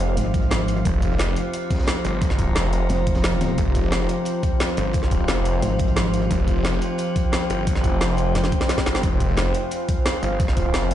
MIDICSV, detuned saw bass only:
0, 0, Header, 1, 2, 480
1, 0, Start_track
1, 0, Key_signature, -4, "minor"
1, 0, Tempo, 340909
1, 1201, Time_signature, 4, 2, 24, 8
1, 15405, End_track
2, 0, Start_track
2, 0, Title_t, "Detuned saw bass"
2, 0, Program_c, 0, 39
2, 0, Note_on_c, 0, 29, 96
2, 221, Note_off_c, 0, 29, 0
2, 1202, Note_on_c, 0, 29, 103
2, 1902, Note_off_c, 0, 29, 0
2, 2881, Note_on_c, 0, 31, 94
2, 3582, Note_off_c, 0, 31, 0
2, 3602, Note_on_c, 0, 29, 101
2, 4062, Note_off_c, 0, 29, 0
2, 5041, Note_on_c, 0, 29, 100
2, 5742, Note_off_c, 0, 29, 0
2, 6722, Note_on_c, 0, 31, 97
2, 7422, Note_off_c, 0, 31, 0
2, 7441, Note_on_c, 0, 29, 95
2, 7902, Note_off_c, 0, 29, 0
2, 8880, Note_on_c, 0, 29, 99
2, 9581, Note_off_c, 0, 29, 0
2, 10560, Note_on_c, 0, 31, 98
2, 11261, Note_off_c, 0, 31, 0
2, 11281, Note_on_c, 0, 29, 98
2, 11741, Note_off_c, 0, 29, 0
2, 12480, Note_on_c, 0, 31, 94
2, 12701, Note_off_c, 0, 31, 0
2, 12720, Note_on_c, 0, 29, 100
2, 13421, Note_off_c, 0, 29, 0
2, 14400, Note_on_c, 0, 31, 97
2, 15101, Note_off_c, 0, 31, 0
2, 15120, Note_on_c, 0, 29, 102
2, 15405, Note_off_c, 0, 29, 0
2, 15405, End_track
0, 0, End_of_file